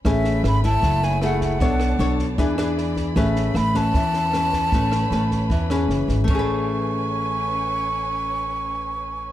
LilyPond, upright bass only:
\new Staff \with { instrumentName = "Upright bass" } { \clef bass \time 4/4 \key a \major \tempo 4 = 154 a,,4 gis,,4 fis,,2 | b,,4 b,,4 e,2 | a,,4 a,,4 e,2 | a,,4 a,,4 e,4 fis,,8 gis,,8 |
a,,1~ | a,,1 | }